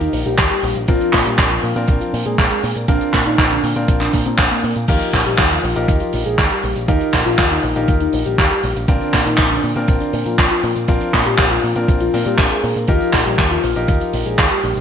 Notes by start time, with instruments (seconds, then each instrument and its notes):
Already playing: grand piano D#4 F4 G4 A#4
0.01 soft synth lead D#4, closed hi-hat, cabasa
0.13 picked electric bass A#1, open hi-hat
0.25 picked electric bass A#1, soft synth lead G4, closed hi-hat, cabasa
0.38 picked electric bass D#2, kick, clap, closed hi-hat, cabasa
0.51 soft synth lead G4, closed hi-hat, cabasa
0.63 picked electric bass A#1, open hi-hat
0.75 picked electric bass A#1, closed hi-hat, cabasa
0.88 picked electric bass A#1, grand piano C4 D4 F4 A#4, soft synth lead F4, kick, closed hi-hat, cabasa
1.00 closed hi-hat, cabasa
1.13 picked electric bass A#2, kick, clap, open hi-hat
1.25 picked electric bass A#2, soft synth lead G4, closed hi-hat, cabasa
1.38 picked electric bass A#1, kick, clap, closed hi-hat, cabasa
1.51 soft synth lead F4, closed hi-hat, cabasa
1.63 picked electric bass A#2, open hi-hat
1.76 picked electric bass A#2, grand piano C4 D4 F4 A#4, closed hi-hat, cabasa
1.88 picked electric bass A#1, kick, closed hi-hat, cabasa
2.01 soft synth lead F4, closed hi-hat, cabasa
2.13 picked electric bass A#2, open hi-hat
2.25 picked electric bass A#2, soft synth lead G#4, closed hi-hat, cabasa
2.38 picked electric bass A#1, kick, clap, closed hi-hat, cabasa
2.50 soft synth lead G#4, closed hi-hat, cabasa
2.63 picked electric bass A#2, open hi-hat
2.76 picked electric bass A#2, closed hi-hat, cabasa
2.88 picked electric bass A#1, grand piano C4 D4 F4 A#4, soft synth lead D4, kick, closed hi-hat, cabasa
3.01 closed hi-hat, cabasa
3.13 picked electric bass A#2, kick, clap, open hi-hat
3.26 picked electric bass A#2, soft synth lead D#4, closed hi-hat, cabasa
3.38 picked electric bass A#1, kick, clap, closed hi-hat, cabasa
3.50 soft synth lead D4, closed hi-hat, cabasa
3.63 picked electric bass A#2, open hi-hat
3.76 picked electric bass A#2, grand piano C4 D4 F4 A#4, closed hi-hat, cabasa
3.88 picked electric bass A#1, kick, closed hi-hat, cabasa
4.01 soft synth lead D4, clap, closed hi-hat, cabasa
4.13 picked electric bass A#2, kick, open hi-hat
4.25 picked electric bass A#2, soft synth lead C4, closed hi-hat, cabasa
4.38 picked electric bass A#1, kick, clap, closed hi-hat, cabasa
4.51 soft synth lead A#3, closed hi-hat, cabasa
4.64 picked electric bass A#2, open hi-hat
4.76 picked electric bass A#2, closed hi-hat, cabasa
4.88 picked electric bass D#2, grand piano D#4 F4 G4 A#4, soft synth lead F4, kick, closed hi-hat, crash, cabasa
5.01 closed hi-hat, cabasa
5.13 picked electric bass A#1, kick, clap, open hi-hat
5.25 picked electric bass A#1, soft synth lead G4, closed hi-hat, cabasa
5.38 picked electric bass D#2, kick, clap, closed hi-hat, cabasa
5.51 soft synth lead F4, closed hi-hat, cabasa
5.64 picked electric bass A#1, open hi-hat
5.75 picked electric bass A#1, grand piano D#4 F4 G4 A#4, closed hi-hat, cabasa
5.88 picked electric bass D#2, kick, closed hi-hat, cabasa
6.00 soft synth lead F4, closed hi-hat, cabasa
6.13 picked electric bass A#1, open hi-hat
6.26 picked electric bass A#1, soft synth lead G#4, closed hi-hat, cabasa
6.38 picked electric bass D#2, kick, clap, closed hi-hat, cabasa
6.51 soft synth lead G4, closed hi-hat, cabasa
6.63 picked electric bass A#1, open hi-hat
6.76 picked electric bass A#1, closed hi-hat, cabasa
6.88 picked electric bass D#2, soft synth lead D#4, grand piano D#4 F4 G4 A#4, kick, closed hi-hat, cabasa
7.01 closed hi-hat, cabasa
7.13 picked electric bass A#1, kick, clap, open hi-hat
7.26 picked electric bass A#1, soft synth lead F4, closed hi-hat, cabasa
7.38 picked electric bass D#2, kick, clap, closed hi-hat, cabasa
7.51 soft synth lead D#4, closed hi-hat, cabasa
7.63 picked electric bass A#1, open hi-hat
7.76 picked electric bass A#1, grand piano D#4 F4 G4 A#4, closed hi-hat, cabasa
7.88 picked electric bass D#2, kick, closed hi-hat, cabasa
8.00 soft synth lead D#4, closed hi-hat, cabasa
8.13 picked electric bass A#1, open hi-hat
8.25 picked electric bass A#1, soft synth lead G4, closed hi-hat, cabasa
8.38 picked electric bass D#2, kick, clap, closed hi-hat, cabasa
8.51 soft synth lead G4, closed hi-hat, cabasa
8.63 picked electric bass A#1, open hi-hat
8.76 picked electric bass A#1, closed hi-hat, cabasa
8.88 picked electric bass A#1, grand piano C4 D4 F4 A#4, soft synth lead D4, kick, closed hi-hat, cabasa
9.01 closed hi-hat, cabasa
9.13 picked electric bass A#2, kick, clap, open hi-hat
9.26 picked electric bass A#2, soft synth lead D#4, closed hi-hat, cabasa
9.37 picked electric bass A#1, kick, clap, closed hi-hat, cabasa
9.50 soft synth lead D4, closed hi-hat, cabasa
9.62 picked electric bass A#2, open hi-hat
9.76 picked electric bass A#2, grand piano C4 D4 F4 A#4, closed hi-hat, cabasa
9.88 picked electric bass A#1, kick, closed hi-hat, cabasa
10.01 soft synth lead D4, closed hi-hat, cabasa
10.13 picked electric bass A#2, open hi-hat
10.26 picked electric bass A#2, soft synth lead F4, closed hi-hat, cabasa
10.38 picked electric bass A#1, kick, clap, closed hi-hat, cabasa
10.50 soft synth lead F4, closed hi-hat, cabasa
10.63 picked electric bass A#2, open hi-hat
10.76 picked electric bass A#2, closed hi-hat, cabasa
10.88 picked electric bass A#1, grand piano C4 D4 F4 A#4, soft synth lead F4, kick, closed hi-hat, cabasa
11.00 closed hi-hat, cabasa
11.13 picked electric bass A#2, kick, clap, open hi-hat
11.26 picked electric bass A#2, soft synth lead G4, closed hi-hat, cabasa
11.38 picked electric bass A#1, kick, clap, closed hi-hat, cabasa
11.51 soft synth lead F4, closed hi-hat, cabasa
11.63 picked electric bass A#2, open hi-hat
11.75 picked electric bass A#2, grand piano C4 D4 F4 A#4, closed hi-hat, cabasa
11.88 picked electric bass A#1, kick, closed hi-hat, cabasa
12.00 soft synth lead F4, closed hi-hat, cabasa
12.14 picked electric bass A#2, grand piano C4 D4 F4 A#4, open hi-hat
12.25 picked electric bass A#2, soft synth lead G4, closed hi-hat, cabasa
12.38 picked electric bass A#1, kick, clap, closed hi-hat, cabasa
12.51 soft synth lead G#4, closed hi-hat, cabasa
12.64 picked electric bass A#2, open hi-hat
12.76 picked electric bass A#2, closed hi-hat, cabasa
12.88 picked electric bass D#2, grand piano D#4 F4 G4 A#4, soft synth lead F4, kick, closed hi-hat, cabasa
13.01 closed hi-hat, cabasa
13.13 picked electric bass A#1, kick, clap, open hi-hat
13.25 picked electric bass A#1, soft synth lead G4, closed hi-hat, cabasa
13.38 picked electric bass D#2, kick, clap, closed hi-hat, cabasa
13.51 soft synth lead F4, closed hi-hat, cabasa
13.63 picked electric bass A#1, open hi-hat
13.76 picked electric bass A#1, grand piano D#4 F4 G4 A#4, closed hi-hat, cabasa
13.88 picked electric bass D#2, kick, closed hi-hat, cabasa
14.01 soft synth lead F4, closed hi-hat, cabasa
14.13 picked electric bass A#1, open hi-hat
14.26 picked electric bass A#1, soft synth lead G#4, closed hi-hat, cabasa
14.38 picked electric bass D#2, kick, clap, closed hi-hat, cabasa
14.51 soft synth lead G4, closed hi-hat, cabasa
14.63 picked electric bass A#1, open hi-hat
14.75 picked electric bass A#1, closed hi-hat, cabasa